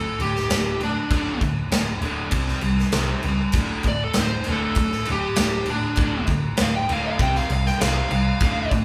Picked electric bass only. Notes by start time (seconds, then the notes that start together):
0.19 D1
0.50 D1
1.11 D1
1.42 D2
1.71 D1
2.01 D1
2.32 C2
2.62 C2
2.93 C2
3.24 C#2
3.54 D1
3.84 D1
4.17 D1
4.48 D1
4.77 D1
5.10 D1
5.38 D1
5.97 D1
6.28 D2
6.59 D1
6.89 D1
7.19 C2
7.50 C2
7.81 C2
8.11 C2
8.41 D1
8.72 D1